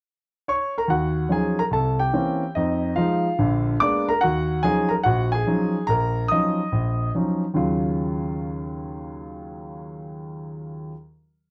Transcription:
0.48 C#5 C#6
0.78 A#4 A#5
0.88 D#2 F#4 F#5
1.29 F3 F#3 C#4 D#4 G#4 G#5
1.59 A#4 A#5
1.71 C2 A4 A5
1.99 G4 G5
2.13 E3 A#3 C4 C#4
2.55 F2 D#4 D#5
2.96 F3 G#3 D#4 F4 F5
3.39 A#1 D3
3.80 G#3 A#3 B3 D4 D5 D6
4.09 A#4 A#5
4.21 D#2 F#4 F#5
4.63 F3 F#3 C#4 D#4 G#4 G#5
4.89 A#4 A#5
5.03 A#1 F#4 F#5
5.32 G#4 G#5
5.47 F3 F#3 C#4 D#4
5.87 A#1 A#4 A#5
6.28 F3 F#3 C#4 D#4 D#5 D#6
6.72 A#1
7.15 F3 F#3 C#4 D#4
7.54 D#2 C#3 F#3 F4

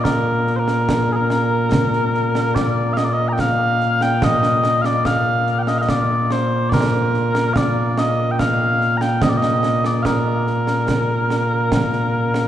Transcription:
Already playing: A#2 A#3
0.04 A#4, concert bass drum, snare
0.47 snare
0.56 A#4 C5
0.68 snare
0.89 concert bass drum, snare
1.12 G#4 A#4
1.30 snare
1.72 concert bass drum, snare
1.93 snare
2.14 snare
2.35 snare
2.55 D5, concert bass drum, snare
2.93 F5, snare
2.97 D#5
3.04 D5
3.13 D#5
3.29 A#5
3.33 G5
3.39 F5, concert bass drum, snare
3.80 snare
4.01 G5, snare
4.22 D#5, concert bass drum, snare
4.43 snare
4.64 snare
4.82 D5 F5, snare
5.05 F5, concert bass drum, snare
5.47 snare
5.59 F5 G5
5.67 D#5, snare
5.78 D#5 F5
5.89 D5, concert bass drum, snare
6.31 C5, snare
6.70 D5, concert bass drum, snare
6.74 A#4
6.93 snare
7.14 snare
7.35 snare
7.53 D5 F5, concert bass drum, snare
7.98 D#5, snare
8.31 G5
8.39 F5, concert bass drum, snare
8.81 snare
8.97 G5 A#5, snare
9.22 D#5, concert bass drum, snare
9.29 D5
9.37 D#5
9.42 snare
9.63 snare
9.84 D5, snare
10.02 A#4 F5, concert bass drum, snare
10.47 snare
10.67 snare
10.88 concert bass drum, snare
11.30 snare
11.72 concert bass drum, snare
11.93 snare
12.34 snare

